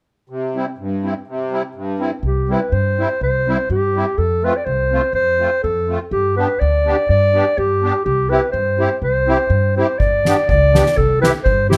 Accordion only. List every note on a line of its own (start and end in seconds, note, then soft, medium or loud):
0.30 0.66 C3 soft
0.55 0.65 G3 medium
0.55 0.66 C4 soft
0.55 0.66 E4 medium
0.78 1.14 G2 medium
1.03 1.13 G3 soft
1.03 1.14 C4 soft
1.03 1.14 E4 soft
1.27 1.63 C3 medium
1.51 1.62 G3 medium
1.51 1.62 C4 soft
1.51 1.63 E4 medium
1.75 2.12 G2 medium
1.99 2.10 G3 soft
1.99 2.11 C4 soft
1.99 2.11 E4 soft
2.48 2.59 G3 medium
2.48 2.60 C4 soft
2.48 2.61 E4 soft
2.97 3.08 G3 soft
2.97 3.08 C4 soft
2.97 3.09 E4 medium
3.47 3.57 G3 soft
3.47 3.57 C4 soft
3.47 3.58 E4 medium
3.94 4.05 G3 soft
3.94 4.05 C4 soft
3.94 4.06 E4 soft
4.43 4.53 A3 soft
4.43 4.53 C4 medium
4.43 4.54 F4 medium
4.91 5.01 A3 soft
4.91 5.02 C4 soft
4.91 5.02 F4 medium
5.39 5.50 A3 medium
5.39 5.50 C4 soft
5.39 5.50 F4 medium
5.88 5.99 A3 soft
5.88 5.99 C4 soft
5.88 6.00 F4 soft
6.37 6.47 B3 medium
6.37 6.48 D4 soft
6.37 6.48 G4 medium
6.85 6.96 B3 soft
6.85 6.96 D4 soft
6.85 6.97 G4 medium
7.33 7.44 B3 medium
7.33 7.45 D4 soft
7.33 7.45 G4 medium
7.82 7.93 B3 medium
7.82 7.93 D4 soft
7.82 7.94 G4 medium
8.30 8.41 C4 medium
8.30 8.41 E4 medium
8.30 8.42 G4 medium
8.78 8.89 C4 soft
8.78 8.89 E4 soft
8.78 8.90 G4 medium
9.27 9.37 C4 medium
9.27 9.38 E4 medium
9.27 9.38 G4 medium
9.77 9.87 C4 medium
9.77 9.87 E4 medium
9.77 9.88 G4 medium
10.26 10.36 B3 medium
10.26 10.36 D4 medium
10.26 10.37 G4 medium
10.73 10.84 B3 medium
10.73 10.84 D4 soft
10.73 10.85 G4 medium
11.21 11.32 C4 medium
11.21 11.32 E4 medium
11.21 11.33 G4 medium
11.69 11.77 C4 soft
11.69 11.77 E4 medium
11.69 11.77 G4 medium